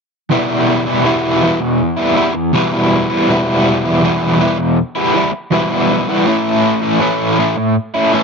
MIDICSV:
0, 0, Header, 1, 3, 480
1, 0, Start_track
1, 0, Tempo, 744417
1, 199, Time_signature, 4, 2, 24, 8
1, 5309, End_track
2, 0, Start_track
2, 0, Title_t, "Overdriven electric guitar"
2, 0, Program_c, 0, 29
2, 195, Note_on_c, 0, 40, 61
2, 202, Note_on_c, 0, 47, 71
2, 205, Note_on_c, 0, 52, 69
2, 208, Note_on_c, 0, 59, 70
2, 210, Note_on_c, 0, 55, 72
2, 213, Note_on_c, 0, 64, 84
2, 550, Note_off_c, 0, 64, 0
2, 553, Note_on_c, 0, 64, 51
2, 559, Note_off_c, 0, 59, 0
2, 561, Note_on_c, 0, 59, 46
2, 563, Note_off_c, 0, 55, 0
2, 565, Note_off_c, 0, 52, 0
2, 565, Note_on_c, 0, 55, 44
2, 568, Note_on_c, 0, 52, 38
2, 671, Note_off_c, 0, 47, 0
2, 672, Note_off_c, 0, 40, 0
2, 675, Note_on_c, 0, 40, 80
2, 678, Note_off_c, 0, 52, 0
2, 679, Note_off_c, 0, 55, 0
2, 679, Note_on_c, 0, 47, 70
2, 680, Note_on_c, 0, 52, 66
2, 682, Note_on_c, 0, 55, 80
2, 683, Note_off_c, 0, 64, 0
2, 686, Note_off_c, 0, 59, 0
2, 686, Note_on_c, 0, 64, 89
2, 689, Note_on_c, 0, 59, 78
2, 913, Note_off_c, 0, 52, 0
2, 916, Note_off_c, 0, 55, 0
2, 916, Note_on_c, 0, 52, 61
2, 918, Note_on_c, 0, 55, 61
2, 922, Note_off_c, 0, 59, 0
2, 925, Note_on_c, 0, 59, 65
2, 927, Note_off_c, 0, 64, 0
2, 930, Note_on_c, 0, 64, 74
2, 1035, Note_off_c, 0, 59, 0
2, 1037, Note_off_c, 0, 64, 0
2, 1038, Note_off_c, 0, 55, 0
2, 1043, Note_off_c, 0, 52, 0
2, 1158, Note_off_c, 0, 47, 0
2, 1267, Note_on_c, 0, 64, 53
2, 1273, Note_on_c, 0, 59, 52
2, 1279, Note_on_c, 0, 55, 55
2, 1281, Note_on_c, 0, 52, 53
2, 1381, Note_off_c, 0, 52, 0
2, 1381, Note_off_c, 0, 55, 0
2, 1383, Note_on_c, 0, 52, 65
2, 1389, Note_off_c, 0, 59, 0
2, 1389, Note_on_c, 0, 55, 64
2, 1395, Note_off_c, 0, 64, 0
2, 1397, Note_on_c, 0, 59, 73
2, 1397, Note_on_c, 0, 64, 68
2, 1504, Note_off_c, 0, 59, 0
2, 1505, Note_off_c, 0, 55, 0
2, 1509, Note_off_c, 0, 64, 0
2, 1513, Note_off_c, 0, 52, 0
2, 1628, Note_off_c, 0, 40, 0
2, 1631, Note_on_c, 0, 40, 68
2, 1634, Note_on_c, 0, 47, 68
2, 1636, Note_on_c, 0, 52, 69
2, 1641, Note_on_c, 0, 55, 70
2, 1645, Note_on_c, 0, 64, 78
2, 1646, Note_on_c, 0, 59, 81
2, 1749, Note_off_c, 0, 64, 0
2, 1751, Note_off_c, 0, 59, 0
2, 1752, Note_on_c, 0, 64, 56
2, 1755, Note_off_c, 0, 55, 0
2, 1759, Note_on_c, 0, 59, 59
2, 1763, Note_on_c, 0, 55, 44
2, 1767, Note_off_c, 0, 52, 0
2, 1770, Note_on_c, 0, 52, 50
2, 1991, Note_off_c, 0, 59, 0
2, 1992, Note_off_c, 0, 64, 0
2, 1994, Note_off_c, 0, 40, 0
2, 1994, Note_on_c, 0, 64, 56
2, 1996, Note_off_c, 0, 47, 0
2, 1998, Note_off_c, 0, 55, 0
2, 1999, Note_on_c, 0, 59, 52
2, 2005, Note_on_c, 0, 55, 53
2, 2007, Note_off_c, 0, 52, 0
2, 2010, Note_on_c, 0, 52, 46
2, 2122, Note_off_c, 0, 55, 0
2, 2122, Note_on_c, 0, 40, 69
2, 2123, Note_on_c, 0, 47, 67
2, 2124, Note_off_c, 0, 59, 0
2, 2126, Note_off_c, 0, 52, 0
2, 2128, Note_on_c, 0, 52, 65
2, 2130, Note_on_c, 0, 55, 65
2, 2132, Note_on_c, 0, 59, 72
2, 2135, Note_off_c, 0, 64, 0
2, 2138, Note_on_c, 0, 64, 81
2, 2476, Note_off_c, 0, 59, 0
2, 2477, Note_off_c, 0, 64, 0
2, 2479, Note_off_c, 0, 55, 0
2, 2479, Note_on_c, 0, 64, 52
2, 2483, Note_on_c, 0, 59, 52
2, 2487, Note_off_c, 0, 52, 0
2, 2487, Note_on_c, 0, 55, 49
2, 2489, Note_on_c, 0, 52, 44
2, 2591, Note_off_c, 0, 40, 0
2, 2595, Note_off_c, 0, 47, 0
2, 2598, Note_on_c, 0, 40, 84
2, 2599, Note_off_c, 0, 55, 0
2, 2600, Note_off_c, 0, 52, 0
2, 2602, Note_on_c, 0, 47, 70
2, 2603, Note_on_c, 0, 52, 86
2, 2604, Note_off_c, 0, 59, 0
2, 2607, Note_on_c, 0, 55, 76
2, 2608, Note_off_c, 0, 64, 0
2, 2610, Note_on_c, 0, 64, 70
2, 2611, Note_on_c, 0, 59, 79
2, 2835, Note_off_c, 0, 52, 0
2, 2835, Note_off_c, 0, 55, 0
2, 2837, Note_on_c, 0, 52, 63
2, 2839, Note_off_c, 0, 59, 0
2, 2843, Note_on_c, 0, 55, 65
2, 2847, Note_on_c, 0, 59, 69
2, 2851, Note_off_c, 0, 64, 0
2, 2853, Note_on_c, 0, 64, 66
2, 2958, Note_off_c, 0, 59, 0
2, 2959, Note_off_c, 0, 64, 0
2, 2961, Note_off_c, 0, 55, 0
2, 2967, Note_off_c, 0, 52, 0
2, 3078, Note_off_c, 0, 40, 0
2, 3080, Note_off_c, 0, 47, 0
2, 3194, Note_on_c, 0, 64, 61
2, 3201, Note_on_c, 0, 59, 62
2, 3203, Note_on_c, 0, 55, 55
2, 3210, Note_on_c, 0, 52, 56
2, 3313, Note_off_c, 0, 52, 0
2, 3315, Note_on_c, 0, 52, 59
2, 3319, Note_off_c, 0, 59, 0
2, 3320, Note_off_c, 0, 55, 0
2, 3326, Note_on_c, 0, 59, 70
2, 3327, Note_on_c, 0, 55, 61
2, 3328, Note_off_c, 0, 64, 0
2, 3330, Note_on_c, 0, 64, 68
2, 3428, Note_off_c, 0, 55, 0
2, 3428, Note_off_c, 0, 59, 0
2, 3431, Note_off_c, 0, 64, 0
2, 3433, Note_off_c, 0, 52, 0
2, 3555, Note_on_c, 0, 40, 69
2, 3559, Note_on_c, 0, 47, 74
2, 3560, Note_on_c, 0, 52, 76
2, 3563, Note_on_c, 0, 55, 78
2, 3567, Note_on_c, 0, 59, 75
2, 3573, Note_on_c, 0, 64, 76
2, 3674, Note_off_c, 0, 59, 0
2, 3675, Note_off_c, 0, 64, 0
2, 3677, Note_on_c, 0, 64, 58
2, 3680, Note_off_c, 0, 55, 0
2, 3682, Note_on_c, 0, 59, 58
2, 3687, Note_off_c, 0, 52, 0
2, 3688, Note_on_c, 0, 55, 52
2, 3690, Note_on_c, 0, 52, 51
2, 3916, Note_off_c, 0, 40, 0
2, 3918, Note_off_c, 0, 47, 0
2, 3918, Note_off_c, 0, 59, 0
2, 3919, Note_off_c, 0, 64, 0
2, 3922, Note_on_c, 0, 64, 58
2, 3923, Note_off_c, 0, 55, 0
2, 3926, Note_on_c, 0, 59, 62
2, 3930, Note_on_c, 0, 55, 57
2, 3931, Note_off_c, 0, 52, 0
2, 3934, Note_on_c, 0, 52, 46
2, 4027, Note_off_c, 0, 59, 0
2, 4029, Note_off_c, 0, 55, 0
2, 4033, Note_on_c, 0, 45, 81
2, 4036, Note_off_c, 0, 52, 0
2, 4038, Note_on_c, 0, 52, 81
2, 4045, Note_on_c, 0, 57, 74
2, 4045, Note_on_c, 0, 61, 69
2, 4048, Note_off_c, 0, 64, 0
2, 4050, Note_on_c, 0, 64, 68
2, 4392, Note_off_c, 0, 64, 0
2, 4394, Note_on_c, 0, 64, 57
2, 4397, Note_off_c, 0, 61, 0
2, 4404, Note_on_c, 0, 61, 53
2, 4410, Note_off_c, 0, 57, 0
2, 4413, Note_on_c, 0, 57, 44
2, 4505, Note_off_c, 0, 45, 0
2, 4512, Note_off_c, 0, 52, 0
2, 4513, Note_on_c, 0, 45, 74
2, 4515, Note_on_c, 0, 52, 80
2, 4517, Note_off_c, 0, 61, 0
2, 4518, Note_off_c, 0, 57, 0
2, 4521, Note_on_c, 0, 57, 87
2, 4523, Note_off_c, 0, 64, 0
2, 4524, Note_on_c, 0, 61, 81
2, 4526, Note_on_c, 0, 64, 78
2, 4755, Note_off_c, 0, 52, 0
2, 4758, Note_on_c, 0, 52, 59
2, 4761, Note_off_c, 0, 61, 0
2, 4763, Note_off_c, 0, 57, 0
2, 4766, Note_on_c, 0, 57, 68
2, 4769, Note_on_c, 0, 61, 62
2, 4770, Note_off_c, 0, 64, 0
2, 4773, Note_on_c, 0, 64, 69
2, 4874, Note_off_c, 0, 61, 0
2, 4877, Note_off_c, 0, 57, 0
2, 4880, Note_off_c, 0, 64, 0
2, 4883, Note_off_c, 0, 52, 0
2, 4996, Note_off_c, 0, 45, 0
2, 5122, Note_on_c, 0, 64, 62
2, 5125, Note_on_c, 0, 61, 52
2, 5133, Note_on_c, 0, 57, 53
2, 5240, Note_off_c, 0, 57, 0
2, 5246, Note_off_c, 0, 61, 0
2, 5246, Note_on_c, 0, 52, 67
2, 5247, Note_on_c, 0, 57, 68
2, 5252, Note_off_c, 0, 64, 0
2, 5254, Note_on_c, 0, 61, 69
2, 5255, Note_on_c, 0, 64, 69
2, 5309, Note_off_c, 0, 52, 0
2, 5309, Note_off_c, 0, 57, 0
2, 5309, Note_off_c, 0, 61, 0
2, 5309, Note_off_c, 0, 64, 0
2, 5309, End_track
3, 0, Start_track
3, 0, Title_t, "Muted overdriven electric guitar strokes"
3, 1039, Note_on_c, 9, 29, 41
3, 1104, Note_off_c, 9, 29, 0
3, 1511, Note_on_c, 9, 29, 39
3, 1576, Note_off_c, 9, 29, 0
3, 2962, Note_on_c, 9, 29, 41
3, 3026, Note_off_c, 9, 29, 0
3, 3434, Note_on_c, 9, 29, 44
3, 3498, Note_off_c, 9, 29, 0
3, 4882, Note_on_c, 9, 29, 36
3, 4946, Note_off_c, 9, 29, 0
3, 5309, End_track
0, 0, End_of_file